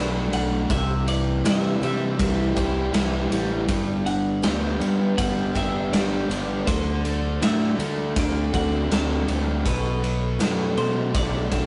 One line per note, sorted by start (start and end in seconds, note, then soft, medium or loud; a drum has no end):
0.00 0.29 B1 medium
0.00 0.69 F#3 medium
0.00 0.70 F#3 medium
0.00 0.31 A3 medium
0.00 0.70 A3 medium
0.00 0.32 D4 medium
0.00 0.70 D4 medium
0.00 0.70 F#4 medium
0.00 0.33 B4 medium
0.32 0.66 B1 medium
0.32 0.70 A3 medium
0.32 0.70 D4 medium
0.32 0.71 F#5 medium
0.32 ride medium
0.70 1.41 C2 medium
0.70 2.56 C3 medium
0.70 2.57 C3 medium
0.70 1.43 E3 medium
0.70 1.08 E5 medium
0.70 kick loud
0.70 ride medium
1.06 1.43 E3 medium
1.06 1.46 D5 medium
1.06 ride medium
1.43 1.78 G2 medium
1.43 2.19 E3 medium
1.43 3.31 E3 medium
1.43 2.17 G3 medium
1.43 1.83 E5 medium
1.43 snare loud
1.43 ride medium
1.81 2.15 C3 medium
1.81 3.68 E3 medium
1.81 3.31 G3 medium
1.81 2.55 C4 medium
1.81 2.54 E5 medium
1.81 ride medium
2.18 2.53 C2 medium
2.18 2.93 E3 medium
2.18 3.28 G3 medium
2.18 3.30 E4 medium
2.18 kick loud
2.18 ride medium
2.55 2.90 C2 medium
2.55 3.68 C4 medium
2.55 3.69 E4 medium
2.55 3.68 G4 medium
2.55 kick medium
2.55 ride medium
2.92 3.27 C2 medium
2.92 3.69 E3 medium
2.92 3.68 E4 medium
2.92 3.68 G4 medium
2.92 snare loud
2.92 ride medium
3.29 3.65 A1 medium
3.29 3.68 G3 medium
3.29 3.69 G3 medium
3.29 3.69 E4 medium
3.29 ride medium
3.67 4.39 G1 loud
3.67 5.54 G2 medium
3.67 5.55 G2 medium
3.67 4.41 B3 medium
3.67 kick loud
3.67 ride medium
4.06 5.93 D3 medium
4.06 4.43 F#5 medium
4.06 ride medium
4.42 4.76 D2 medium
4.42 5.18 G3 medium
4.42 4.79 B3 medium
4.42 5.14 B3 medium
4.42 5.18 G5 medium
4.42 snare loud
4.42 ride medium
4.79 5.14 G2 medium
4.79 6.66 G3 medium
4.79 5.54 B3 medium
4.79 6.28 B3 medium
4.79 ride medium
5.16 5.52 G1 medium
5.16 5.92 G3 medium
5.16 6.27 B3 medium
5.16 6.29 D4 medium
5.16 5.56 F#5 loud
5.16 kick medium
5.16 ride medium
5.55 5.89 G1 medium
5.55 6.67 B3 medium
5.55 8.53 D4 medium
5.55 6.67 G4 medium
5.55 5.94 E5 medium
5.55 kick medium
5.55 ride medium
5.91 6.26 G1 medium
5.91 6.66 G3 medium
5.91 8.90 D4 medium
5.91 6.67 G4 medium
5.91 6.66 D5 medium
5.91 snare loud
5.91 ride medium
6.28 6.63 G1 medium
6.28 6.66 B3 medium
6.28 6.67 B3 medium
6.28 8.16 D4 medium
6.28 ride medium
6.66 7.38 D2 medium
6.66 7.77 D3 medium
6.66 7.40 D3 medium
6.66 7.41 F#3 medium
6.66 7.44 C5 medium
6.66 kick loud
6.66 ride medium
7.04 7.78 A3 medium
7.04 ride medium
7.41 7.75 A2 medium
7.41 8.15 D3 medium
7.41 9.28 F#3 medium
7.41 8.14 A3 medium
7.41 8.19 E5 medium
7.41 snare loud
7.41 ride loud
7.78 9.65 D3 medium
7.78 8.13 D3 medium
7.78 9.27 A3 medium
7.78 8.52 A3 medium
7.78 ride medium
8.16 8.50 D2 medium
8.16 8.90 D3 medium
8.16 9.26 A3 medium
8.16 9.27 C4 medium
8.16 8.56 D5 loud
8.16 kick loud
8.16 ride loud
8.53 8.87 D2 medium
8.53 9.64 A3 medium
8.53 9.65 C4 medium
8.53 9.65 F#4 medium
8.53 8.93 F#5 loud
8.53 kick medium
8.53 ride medium
8.90 9.24 D2 medium
8.90 9.66 D3 medium
8.90 9.65 C4 medium
8.90 9.66 F#4 medium
8.90 9.44 A5 medium
8.90 snare loud
8.90 ride medium
9.28 9.62 D2 medium
9.28 9.65 A3 medium
9.28 9.65 C4 medium
9.28 ride medium
9.65 10.36 B1 medium
9.65 11.52 B2 medium
9.65 10.38 A3 medium
9.65 10.81 B4 medium
9.65 kick medium
9.65 ride medium
10.02 10.39 F#3 medium
10.02 ride medium
10.39 10.74 F#2 medium
10.39 11.13 F#3 medium
10.39 11.12 A3 medium
10.39 10.76 A3 medium
10.39 snare loud
10.39 ride medium
10.77 11.11 B2 medium
10.77 11.66 F#3 medium
10.77 11.66 A3 medium
10.77 11.51 A3 medium
10.77 11.15 C5 medium
10.77 ride medium
11.14 11.48 B1 medium
11.14 11.66 F#3 medium
11.14 11.66 A3 medium
11.14 11.66 D4 medium
11.14 11.50 D5 loud
11.14 kick loud
11.14 ride medium
11.51 11.66 B1 medium
11.51 11.66 A3 medium
11.51 11.66 D4 medium
11.51 11.66 F#4 medium
11.51 11.66 A4 medium
11.51 kick medium
11.51 ride medium